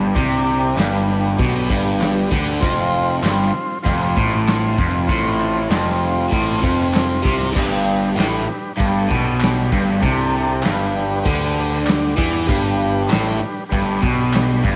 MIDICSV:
0, 0, Header, 1, 7, 480
1, 0, Start_track
1, 0, Tempo, 616650
1, 120, Time_signature, 4, 2, 24, 8
1, 11488, End_track
2, 0, Start_track
2, 0, Title_t, "Transistor combo organ"
2, 0, Program_c, 0, 18
2, 109, Note_on_c, 0, 74, 98
2, 110, Note_on_c, 0, 62, 92
2, 120, Note_on_c, 0, 67, 89
2, 545, Note_off_c, 0, 62, 0
2, 545, Note_off_c, 0, 74, 0
2, 550, Note_off_c, 0, 67, 0
2, 589, Note_on_c, 0, 71, 89
2, 593, Note_on_c, 0, 62, 72
2, 607, Note_on_c, 0, 67, 71
2, 1025, Note_off_c, 0, 71, 0
2, 1027, Note_off_c, 0, 62, 0
2, 1034, Note_off_c, 0, 67, 0
2, 1063, Note_on_c, 0, 67, 79
2, 1064, Note_on_c, 0, 71, 98
2, 1065, Note_on_c, 0, 62, 76
2, 1502, Note_off_c, 0, 67, 0
2, 1503, Note_off_c, 0, 71, 0
2, 1504, Note_off_c, 0, 62, 0
2, 1526, Note_on_c, 0, 62, 90
2, 1531, Note_on_c, 0, 67, 75
2, 1549, Note_on_c, 0, 71, 91
2, 1974, Note_off_c, 0, 62, 0
2, 1976, Note_off_c, 0, 67, 0
2, 1985, Note_off_c, 0, 71, 0
2, 2026, Note_on_c, 0, 60, 106
2, 2033, Note_on_c, 0, 65, 92
2, 2037, Note_on_c, 0, 72, 115
2, 2464, Note_off_c, 0, 60, 0
2, 2468, Note_off_c, 0, 65, 0
2, 2470, Note_off_c, 0, 72, 0
2, 2502, Note_on_c, 0, 65, 73
2, 2509, Note_on_c, 0, 60, 80
2, 2512, Note_on_c, 0, 72, 91
2, 2942, Note_off_c, 0, 65, 0
2, 2946, Note_off_c, 0, 60, 0
2, 2947, Note_off_c, 0, 72, 0
2, 2978, Note_on_c, 0, 65, 74
2, 2987, Note_on_c, 0, 72, 96
2, 2993, Note_on_c, 0, 60, 81
2, 3420, Note_off_c, 0, 65, 0
2, 3425, Note_off_c, 0, 72, 0
2, 3428, Note_off_c, 0, 60, 0
2, 3482, Note_on_c, 0, 65, 78
2, 3483, Note_on_c, 0, 60, 82
2, 3483, Note_on_c, 0, 72, 86
2, 3913, Note_off_c, 0, 60, 0
2, 3913, Note_off_c, 0, 65, 0
2, 3913, Note_off_c, 0, 72, 0
2, 3947, Note_on_c, 0, 60, 105
2, 3948, Note_on_c, 0, 65, 87
2, 3952, Note_on_c, 0, 72, 104
2, 4385, Note_off_c, 0, 60, 0
2, 4386, Note_off_c, 0, 65, 0
2, 4388, Note_off_c, 0, 72, 0
2, 4446, Note_on_c, 0, 60, 83
2, 4456, Note_on_c, 0, 65, 74
2, 4456, Note_on_c, 0, 72, 85
2, 4875, Note_off_c, 0, 60, 0
2, 4880, Note_off_c, 0, 65, 0
2, 4880, Note_off_c, 0, 72, 0
2, 4920, Note_on_c, 0, 60, 88
2, 4927, Note_on_c, 0, 65, 75
2, 4936, Note_on_c, 0, 72, 81
2, 5352, Note_off_c, 0, 60, 0
2, 5355, Note_off_c, 0, 65, 0
2, 5360, Note_off_c, 0, 72, 0
2, 5404, Note_on_c, 0, 72, 81
2, 5406, Note_on_c, 0, 60, 83
2, 5407, Note_on_c, 0, 65, 71
2, 5834, Note_off_c, 0, 72, 0
2, 5835, Note_off_c, 0, 60, 0
2, 5835, Note_off_c, 0, 65, 0
2, 5881, Note_on_c, 0, 71, 97
2, 5882, Note_on_c, 0, 62, 89
2, 5886, Note_on_c, 0, 67, 88
2, 6312, Note_off_c, 0, 71, 0
2, 6313, Note_off_c, 0, 62, 0
2, 6315, Note_off_c, 0, 67, 0
2, 6362, Note_on_c, 0, 62, 88
2, 6365, Note_on_c, 0, 67, 74
2, 6367, Note_on_c, 0, 71, 84
2, 6793, Note_off_c, 0, 62, 0
2, 6794, Note_off_c, 0, 67, 0
2, 6796, Note_off_c, 0, 71, 0
2, 6837, Note_on_c, 0, 62, 79
2, 6844, Note_on_c, 0, 69, 92
2, 6849, Note_on_c, 0, 67, 74
2, 7270, Note_off_c, 0, 62, 0
2, 7274, Note_off_c, 0, 69, 0
2, 7276, Note_off_c, 0, 67, 0
2, 7334, Note_on_c, 0, 67, 70
2, 7335, Note_on_c, 0, 62, 74
2, 7335, Note_on_c, 0, 71, 97
2, 7759, Note_off_c, 0, 62, 0
2, 7759, Note_off_c, 0, 67, 0
2, 7759, Note_off_c, 0, 71, 0
2, 7783, Note_on_c, 0, 62, 95
2, 7787, Note_on_c, 0, 67, 88
2, 7794, Note_on_c, 0, 69, 112
2, 8223, Note_off_c, 0, 62, 0
2, 8225, Note_off_c, 0, 67, 0
2, 8228, Note_off_c, 0, 69, 0
2, 8283, Note_on_c, 0, 67, 74
2, 8289, Note_on_c, 0, 71, 93
2, 8290, Note_on_c, 0, 62, 85
2, 8712, Note_off_c, 0, 67, 0
2, 8715, Note_off_c, 0, 71, 0
2, 8716, Note_off_c, 0, 62, 0
2, 8734, Note_on_c, 0, 67, 71
2, 8739, Note_on_c, 0, 71, 98
2, 8741, Note_on_c, 0, 62, 87
2, 9177, Note_off_c, 0, 67, 0
2, 9180, Note_off_c, 0, 71, 0
2, 9181, Note_off_c, 0, 62, 0
2, 9225, Note_on_c, 0, 62, 85
2, 9227, Note_on_c, 0, 67, 80
2, 9236, Note_on_c, 0, 74, 88
2, 9663, Note_off_c, 0, 62, 0
2, 9663, Note_off_c, 0, 67, 0
2, 9668, Note_off_c, 0, 74, 0
2, 9703, Note_on_c, 0, 67, 95
2, 9709, Note_on_c, 0, 62, 96
2, 9710, Note_on_c, 0, 71, 109
2, 10141, Note_off_c, 0, 67, 0
2, 10144, Note_off_c, 0, 62, 0
2, 10144, Note_off_c, 0, 71, 0
2, 10173, Note_on_c, 0, 62, 86
2, 10176, Note_on_c, 0, 71, 90
2, 10185, Note_on_c, 0, 67, 81
2, 10615, Note_off_c, 0, 62, 0
2, 10617, Note_off_c, 0, 71, 0
2, 10621, Note_off_c, 0, 67, 0
2, 10657, Note_on_c, 0, 67, 81
2, 10658, Note_on_c, 0, 71, 93
2, 10662, Note_on_c, 0, 62, 89
2, 11097, Note_off_c, 0, 67, 0
2, 11097, Note_off_c, 0, 71, 0
2, 11099, Note_off_c, 0, 62, 0
2, 11141, Note_on_c, 0, 62, 77
2, 11146, Note_on_c, 0, 67, 72
2, 11148, Note_on_c, 0, 71, 93
2, 11488, Note_off_c, 0, 62, 0
2, 11488, Note_off_c, 0, 67, 0
2, 11488, Note_off_c, 0, 71, 0
2, 11488, End_track
3, 0, Start_track
3, 0, Title_t, "Overdriven electric guitar"
3, 0, Program_c, 1, 29
3, 0, Note_on_c, 1, 43, 91
3, 109, Note_off_c, 1, 43, 0
3, 120, Note_on_c, 1, 48, 119
3, 594, Note_off_c, 1, 48, 0
3, 598, Note_on_c, 1, 43, 104
3, 1072, Note_off_c, 1, 43, 0
3, 1078, Note_on_c, 1, 47, 90
3, 1313, Note_off_c, 1, 47, 0
3, 1322, Note_on_c, 1, 43, 101
3, 1795, Note_off_c, 1, 43, 0
3, 1796, Note_on_c, 1, 50, 90
3, 2027, Note_on_c, 1, 41, 105
3, 2032, Note_off_c, 1, 50, 0
3, 2508, Note_off_c, 1, 41, 0
3, 2519, Note_on_c, 1, 43, 104
3, 2754, Note_off_c, 1, 43, 0
3, 2997, Note_on_c, 1, 41, 112
3, 3233, Note_off_c, 1, 41, 0
3, 3239, Note_on_c, 1, 45, 108
3, 3714, Note_off_c, 1, 45, 0
3, 3718, Note_on_c, 1, 41, 95
3, 3952, Note_on_c, 1, 45, 113
3, 3953, Note_off_c, 1, 41, 0
3, 4431, Note_off_c, 1, 45, 0
3, 4431, Note_on_c, 1, 41, 116
3, 4905, Note_on_c, 1, 45, 95
3, 4911, Note_off_c, 1, 41, 0
3, 5147, Note_off_c, 1, 45, 0
3, 5151, Note_on_c, 1, 41, 101
3, 5624, Note_on_c, 1, 48, 84
3, 5630, Note_off_c, 1, 41, 0
3, 5857, Note_on_c, 1, 43, 99
3, 5867, Note_off_c, 1, 48, 0
3, 6344, Note_off_c, 1, 43, 0
3, 6349, Note_on_c, 1, 45, 102
3, 6589, Note_off_c, 1, 45, 0
3, 6829, Note_on_c, 1, 43, 96
3, 7069, Note_off_c, 1, 43, 0
3, 7071, Note_on_c, 1, 47, 92
3, 7550, Note_off_c, 1, 47, 0
3, 7566, Note_on_c, 1, 43, 91
3, 7797, Note_off_c, 1, 43, 0
3, 7799, Note_on_c, 1, 48, 103
3, 8273, Note_off_c, 1, 48, 0
3, 8275, Note_on_c, 1, 43, 106
3, 8751, Note_off_c, 1, 43, 0
3, 8757, Note_on_c, 1, 50, 105
3, 9468, Note_off_c, 1, 50, 0
3, 9471, Note_on_c, 1, 52, 93
3, 9709, Note_off_c, 1, 52, 0
3, 9709, Note_on_c, 1, 43, 111
3, 10186, Note_on_c, 1, 45, 109
3, 10187, Note_off_c, 1, 43, 0
3, 10425, Note_off_c, 1, 45, 0
3, 10678, Note_on_c, 1, 43, 92
3, 10911, Note_off_c, 1, 43, 0
3, 10911, Note_on_c, 1, 47, 107
3, 11386, Note_off_c, 1, 47, 0
3, 11390, Note_on_c, 1, 43, 93
3, 11488, Note_off_c, 1, 43, 0
3, 11488, End_track
4, 0, Start_track
4, 0, Title_t, "Picked electric bass"
4, 0, Program_c, 2, 34
4, 0, Note_on_c, 2, 31, 84
4, 107, Note_off_c, 2, 31, 0
4, 121, Note_on_c, 2, 36, 102
4, 570, Note_off_c, 2, 36, 0
4, 600, Note_on_c, 2, 31, 92
4, 1050, Note_off_c, 2, 31, 0
4, 1081, Note_on_c, 2, 35, 96
4, 1304, Note_off_c, 2, 35, 0
4, 1328, Note_on_c, 2, 31, 90
4, 1774, Note_off_c, 2, 31, 0
4, 1809, Note_on_c, 2, 38, 86
4, 2029, Note_off_c, 2, 38, 0
4, 2050, Note_on_c, 2, 29, 97
4, 2495, Note_off_c, 2, 29, 0
4, 2517, Note_on_c, 2, 31, 83
4, 2743, Note_off_c, 2, 31, 0
4, 3001, Note_on_c, 2, 29, 101
4, 3225, Note_off_c, 2, 29, 0
4, 3247, Note_on_c, 2, 33, 82
4, 3694, Note_off_c, 2, 33, 0
4, 3727, Note_on_c, 2, 29, 92
4, 3949, Note_off_c, 2, 29, 0
4, 3963, Note_on_c, 2, 33, 100
4, 4412, Note_off_c, 2, 33, 0
4, 4431, Note_on_c, 2, 29, 93
4, 4887, Note_off_c, 2, 29, 0
4, 4925, Note_on_c, 2, 33, 89
4, 5148, Note_off_c, 2, 33, 0
4, 5161, Note_on_c, 2, 29, 87
4, 5612, Note_off_c, 2, 29, 0
4, 5643, Note_on_c, 2, 36, 92
4, 5866, Note_off_c, 2, 36, 0
4, 5886, Note_on_c, 2, 31, 99
4, 6334, Note_off_c, 2, 31, 0
4, 6366, Note_on_c, 2, 33, 91
4, 6588, Note_off_c, 2, 33, 0
4, 6853, Note_on_c, 2, 31, 94
4, 7072, Note_off_c, 2, 31, 0
4, 7093, Note_on_c, 2, 35, 82
4, 7537, Note_off_c, 2, 35, 0
4, 7572, Note_on_c, 2, 31, 90
4, 7791, Note_off_c, 2, 31, 0
4, 7807, Note_on_c, 2, 36, 105
4, 8253, Note_off_c, 2, 36, 0
4, 8290, Note_on_c, 2, 31, 88
4, 8735, Note_off_c, 2, 31, 0
4, 8765, Note_on_c, 2, 38, 92
4, 9452, Note_off_c, 2, 38, 0
4, 9482, Note_on_c, 2, 40, 94
4, 9705, Note_off_c, 2, 40, 0
4, 9726, Note_on_c, 2, 31, 93
4, 10171, Note_off_c, 2, 31, 0
4, 10194, Note_on_c, 2, 33, 92
4, 10419, Note_off_c, 2, 33, 0
4, 10675, Note_on_c, 2, 31, 89
4, 10900, Note_off_c, 2, 31, 0
4, 10923, Note_on_c, 2, 35, 89
4, 11368, Note_off_c, 2, 35, 0
4, 11400, Note_on_c, 2, 31, 94
4, 11488, Note_off_c, 2, 31, 0
4, 11488, End_track
5, 0, Start_track
5, 0, Title_t, "Muted overdriven electric guitar strokes"
5, 2763, Note_on_c, 9, 29, 56
5, 2841, Note_off_c, 9, 29, 0
5, 6587, Note_on_c, 9, 29, 62
5, 6665, Note_off_c, 9, 29, 0
5, 10423, Note_on_c, 9, 29, 63
5, 10501, Note_off_c, 9, 29, 0
5, 11488, End_track
6, 0, Start_track
6, 0, Title_t, "Muted picked electric bass strokes"
6, 2754, Note_on_c, 9, 29, 38
6, 2832, Note_off_c, 9, 29, 0
6, 6616, Note_on_c, 9, 29, 38
6, 6694, Note_off_c, 9, 29, 0
6, 10436, Note_on_c, 9, 29, 38
6, 10514, Note_off_c, 9, 29, 0
6, 11488, End_track
7, 0, Start_track
7, 0, Title_t, "Drums"
7, 124, Note_on_c, 9, 46, 61
7, 125, Note_on_c, 9, 36, 118
7, 201, Note_off_c, 9, 46, 0
7, 203, Note_off_c, 9, 36, 0
7, 609, Note_on_c, 9, 46, 52
7, 612, Note_on_c, 9, 39, 94
7, 620, Note_on_c, 9, 38, 104
7, 687, Note_off_c, 9, 46, 0
7, 690, Note_off_c, 9, 39, 0
7, 698, Note_off_c, 9, 38, 0
7, 1085, Note_on_c, 9, 36, 109
7, 1087, Note_on_c, 9, 46, 57
7, 1163, Note_off_c, 9, 36, 0
7, 1165, Note_off_c, 9, 46, 0
7, 1324, Note_on_c, 9, 36, 93
7, 1402, Note_off_c, 9, 36, 0
7, 1564, Note_on_c, 9, 39, 106
7, 1565, Note_on_c, 9, 46, 61
7, 1575, Note_on_c, 9, 38, 104
7, 1642, Note_off_c, 9, 39, 0
7, 1642, Note_off_c, 9, 46, 0
7, 1653, Note_off_c, 9, 38, 0
7, 1804, Note_on_c, 9, 36, 109
7, 1882, Note_off_c, 9, 36, 0
7, 2044, Note_on_c, 9, 36, 123
7, 2045, Note_on_c, 9, 46, 58
7, 2122, Note_off_c, 9, 36, 0
7, 2123, Note_off_c, 9, 46, 0
7, 2516, Note_on_c, 9, 39, 99
7, 2524, Note_on_c, 9, 46, 56
7, 2535, Note_on_c, 9, 38, 116
7, 2594, Note_off_c, 9, 39, 0
7, 2602, Note_off_c, 9, 46, 0
7, 2613, Note_off_c, 9, 38, 0
7, 3004, Note_on_c, 9, 36, 100
7, 3006, Note_on_c, 9, 46, 63
7, 3082, Note_off_c, 9, 36, 0
7, 3084, Note_off_c, 9, 46, 0
7, 3246, Note_on_c, 9, 36, 104
7, 3323, Note_off_c, 9, 36, 0
7, 3480, Note_on_c, 9, 46, 58
7, 3488, Note_on_c, 9, 39, 95
7, 3491, Note_on_c, 9, 38, 107
7, 3558, Note_off_c, 9, 46, 0
7, 3566, Note_off_c, 9, 39, 0
7, 3569, Note_off_c, 9, 38, 0
7, 3724, Note_on_c, 9, 36, 114
7, 3801, Note_off_c, 9, 36, 0
7, 3958, Note_on_c, 9, 46, 63
7, 3962, Note_on_c, 9, 36, 116
7, 4036, Note_off_c, 9, 46, 0
7, 4040, Note_off_c, 9, 36, 0
7, 4204, Note_on_c, 9, 39, 61
7, 4282, Note_off_c, 9, 39, 0
7, 4439, Note_on_c, 9, 46, 52
7, 4448, Note_on_c, 9, 39, 95
7, 4450, Note_on_c, 9, 38, 113
7, 4517, Note_off_c, 9, 46, 0
7, 4525, Note_off_c, 9, 39, 0
7, 4528, Note_off_c, 9, 38, 0
7, 4923, Note_on_c, 9, 36, 106
7, 4925, Note_on_c, 9, 46, 54
7, 5000, Note_off_c, 9, 36, 0
7, 5002, Note_off_c, 9, 46, 0
7, 5164, Note_on_c, 9, 36, 99
7, 5242, Note_off_c, 9, 36, 0
7, 5399, Note_on_c, 9, 39, 103
7, 5407, Note_on_c, 9, 46, 63
7, 5418, Note_on_c, 9, 38, 109
7, 5477, Note_off_c, 9, 39, 0
7, 5485, Note_off_c, 9, 46, 0
7, 5496, Note_off_c, 9, 38, 0
7, 5645, Note_on_c, 9, 36, 111
7, 5723, Note_off_c, 9, 36, 0
7, 5779, Note_on_c, 9, 38, 35
7, 5857, Note_off_c, 9, 38, 0
7, 5886, Note_on_c, 9, 36, 116
7, 5886, Note_on_c, 9, 49, 106
7, 5964, Note_off_c, 9, 36, 0
7, 5964, Note_off_c, 9, 49, 0
7, 6367, Note_on_c, 9, 39, 94
7, 6372, Note_on_c, 9, 46, 54
7, 6383, Note_on_c, 9, 38, 110
7, 6445, Note_off_c, 9, 39, 0
7, 6450, Note_off_c, 9, 46, 0
7, 6461, Note_off_c, 9, 38, 0
7, 6850, Note_on_c, 9, 36, 100
7, 6853, Note_on_c, 9, 46, 60
7, 6928, Note_off_c, 9, 36, 0
7, 6931, Note_off_c, 9, 46, 0
7, 7090, Note_on_c, 9, 36, 103
7, 7168, Note_off_c, 9, 36, 0
7, 7318, Note_on_c, 9, 39, 111
7, 7335, Note_on_c, 9, 46, 67
7, 7346, Note_on_c, 9, 38, 113
7, 7396, Note_off_c, 9, 39, 0
7, 7413, Note_off_c, 9, 46, 0
7, 7424, Note_off_c, 9, 38, 0
7, 7568, Note_on_c, 9, 36, 108
7, 7646, Note_off_c, 9, 36, 0
7, 7701, Note_on_c, 9, 38, 33
7, 7779, Note_off_c, 9, 38, 0
7, 7806, Note_on_c, 9, 36, 114
7, 7810, Note_on_c, 9, 46, 70
7, 7884, Note_off_c, 9, 36, 0
7, 7887, Note_off_c, 9, 46, 0
7, 8271, Note_on_c, 9, 39, 96
7, 8283, Note_on_c, 9, 46, 62
7, 8294, Note_on_c, 9, 38, 101
7, 8349, Note_off_c, 9, 39, 0
7, 8361, Note_off_c, 9, 46, 0
7, 8372, Note_off_c, 9, 38, 0
7, 8761, Note_on_c, 9, 46, 50
7, 8763, Note_on_c, 9, 36, 106
7, 8839, Note_off_c, 9, 46, 0
7, 8841, Note_off_c, 9, 36, 0
7, 9236, Note_on_c, 9, 39, 104
7, 9247, Note_on_c, 9, 46, 60
7, 9258, Note_on_c, 9, 38, 113
7, 9313, Note_off_c, 9, 39, 0
7, 9325, Note_off_c, 9, 46, 0
7, 9336, Note_off_c, 9, 38, 0
7, 9482, Note_on_c, 9, 36, 101
7, 9560, Note_off_c, 9, 36, 0
7, 9721, Note_on_c, 9, 36, 115
7, 9727, Note_on_c, 9, 46, 55
7, 9799, Note_off_c, 9, 36, 0
7, 9805, Note_off_c, 9, 46, 0
7, 10195, Note_on_c, 9, 39, 91
7, 10207, Note_on_c, 9, 46, 57
7, 10218, Note_on_c, 9, 38, 114
7, 10272, Note_off_c, 9, 39, 0
7, 10285, Note_off_c, 9, 46, 0
7, 10295, Note_off_c, 9, 38, 0
7, 10681, Note_on_c, 9, 36, 94
7, 10685, Note_on_c, 9, 46, 62
7, 10759, Note_off_c, 9, 36, 0
7, 10763, Note_off_c, 9, 46, 0
7, 10921, Note_on_c, 9, 36, 103
7, 10999, Note_off_c, 9, 36, 0
7, 11156, Note_on_c, 9, 39, 109
7, 11165, Note_on_c, 9, 46, 68
7, 11176, Note_on_c, 9, 38, 116
7, 11234, Note_off_c, 9, 39, 0
7, 11243, Note_off_c, 9, 46, 0
7, 11254, Note_off_c, 9, 38, 0
7, 11402, Note_on_c, 9, 36, 112
7, 11479, Note_off_c, 9, 36, 0
7, 11488, End_track
0, 0, End_of_file